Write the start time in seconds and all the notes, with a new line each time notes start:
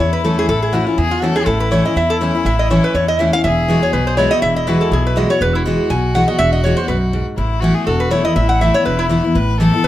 Already playing: E4
0.00 E2 C#5
0.13 B4
0.24 E3 A3 C#4 E4 A4
0.39 G#4
0.49 A1 A2 A4
0.62 G#4
0.73 E3 A3 C#4 E4 F#4
0.86 C#4 E4 F4
0.98 E2 E4 G#4
1.11 F4
1.18 G#4
1.22 E3 A3 C#4 E4 F#4 A4
1.36 C#4 E4 G#4
1.46 A1 A2 E4 A4
1.60 B4
1.71 E3 A3 C#4 E4 C#5
1.85 C#4 E4 D#5
1.96 E2 E5
2.10 A4
2.21 E3 A3 C#4 E4
2.35 C#4 E4
2.45 A1 A2 E5
2.59 D#5
2.70 E3 A3 C#4 E4 C#5
2.84 B4
2.94 E2 C#5
3.08 D#5
3.19 E3 A3 C#4 E4 E5
3.33 C#4 E4 F5
3.44 E1 E2 G#4 E5
3.68 E3 G#3 B3 F#4
3.82 B3 F#4 C#5
3.93 B1 B2 B4
4.07 C5
4.17 E3 G#3 B3 E4 F#4 C#5
4.31 B3 F#4 D#5
4.42 E1 E2 E5
4.56 D#5
4.67 E3 G#3 B3 F#4 B4
4.81 A4
4.91 B1 B2 G#4
5.07 B4
5.16 E3 G#3 B3 F#4 D#5
5.30 B3 F#4 C#5
5.40 E1 E2 F#4 B4
5.55 E4
5.66 E3 G#3 B3 F#4
5.90 B1 B2 G#5
6.15 E3 G#3 B3 F#4 F#5
6.28 B3 F#4 D#5
6.39 E1 E2 E5
6.53 D#5
6.64 E3 G#3 B3 F#4 C#5
6.77 B3 F#4 C5
6.88 B1 F#2 B4
7.13 G#2
7.37 A1 A2 E4
7.60 E3 A3 B3 E4 F#4
7.74 G#4
7.86 E1 E2 F#4 A4
8.00 B4
8.11 E3 A3 B3 E4 C#5
8.25 B3 E4 D#5
8.36 A1 A2 E5
8.49 F#5
8.61 E3 A3 B3 E4 E5
8.74 E4 C#5
8.85 E1 E2 B4
8.99 E4
9.09 E3 A3 B3 E4
9.24 B3 E4
9.35 A1 A2 B4
9.59 E3 A3 B3 E4 A4
9.74 B3 E4
9.84 E1 E2 B4